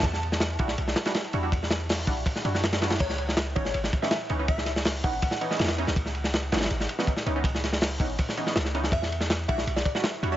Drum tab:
CC |--------------------------------|--------------------------------|x-------------------------------|--------------------------------|
RD |x---x---x-x-x---x---x-x-x-x-x---|x---x-x-----x-x-x---x---x-x-x-x-|x---x---x-x-x---x---x---x-x-x---|x---x-------x-x-x---x---xxx-x---|
HH |--------------------------------|--------o-----------------------|--------------------------------|--------o-----------------------|
SD |--o---o-o-----o---o-o-o-o-------|--o-o---o---------o---o-o-o-o-o-|--o---o-o-----o---o---o-o-------|--o-o-o-o---------o---o-ooo---o-|
BD |o-----------o-------------------|o-----------o---o---------------|o-----------o-------o-----------|o-----------o---o---------------|

CC |--------------------------------|--------------------------------|--------------------------------|
RD |x---x---x-x-xxxxx---x---x---x---|x---x-------x-x-x---x---x---x---|x---x---x-x-x---x---x---x-x-x---|
HH |--------------------------------|--------o-----------------------|--------------------------------|
SD |--o---o-o---oooo--o---o---o-----|--o-o-o-o---------o---o-o-o---o-|--o---o-o-----o---o---o-o-------|
BD |o-----------------------o-------|o-----------o---o---------------|o-----------o-------o-----------|